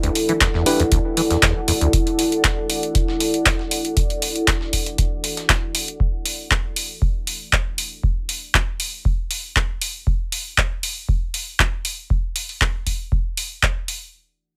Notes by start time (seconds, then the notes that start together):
Already playing: E4 A4 D5 F#5
0.03 D2, closed hi-hat
0.15 closed hi-hat, open hi-hat
0.29 E3, closed hi-hat
0.41 E2, kick, snare, clap, closed hi-hat
0.54 E2, snare
0.66 D4 E4 G4 B4, closed hi-hat, open hi-hat
0.80 E2, closed hi-hat
0.92 D2, kick, closed hi-hat
1.17 E3, closed hi-hat, open hi-hat
1.30 E2, snare, closed hi-hat
1.42 E2, kick, snare, clap, closed hi-hat
1.68 E2, closed hi-hat, open hi-hat
1.81 D2, closed hi-hat
1.93 kick, closed hi-hat
2.07 closed hi-hat
2.19 closed hi-hat, open hi-hat
2.32 closed hi-hat
2.44 kick, snare, clap, closed hi-hat
2.70 closed hi-hat, open hi-hat
2.83 closed hi-hat
2.95 kick, closed hi-hat
3.08 snare
3.20 closed hi-hat, open hi-hat
3.34 closed hi-hat
3.46 kick, snare, clap, closed hi-hat
3.59 snare
3.71 closed hi-hat, open hi-hat
3.85 closed hi-hat
3.97 kick, closed hi-hat
4.10 closed hi-hat
4.22 closed hi-hat, open hi-hat
4.36 closed hi-hat
4.47 kick, snare, clap, closed hi-hat
4.61 snare
4.73 kick, closed hi-hat, open hi-hat
4.86 closed hi-hat
4.98 kick, closed hi-hat
5.24 closed hi-hat, open hi-hat
5.37 snare, closed hi-hat
5.49 kick, snare, clap, closed hi-hat
5.75 closed hi-hat, open hi-hat
5.88 closed hi-hat
6.00 kick
6.26 open hi-hat
6.51 kick, clap
6.76 open hi-hat
7.02 kick
7.27 open hi-hat
7.53 kick, clap
7.78 open hi-hat
8.03 kick
8.29 open hi-hat
8.54 kick, clap
8.80 open hi-hat
9.05 kick
9.31 open hi-hat
9.56 kick, clap
9.81 open hi-hat
10.07 kick
10.32 open hi-hat
10.58 kick, clap
10.83 open hi-hat
11.09 kick
11.34 open hi-hat
11.59 kick, clap
11.85 open hi-hat
12.10 kick
12.36 open hi-hat
12.49 open hi-hat
12.61 kick, clap
12.87 kick, open hi-hat
13.12 kick
13.37 open hi-hat
13.63 kick, clap
13.88 open hi-hat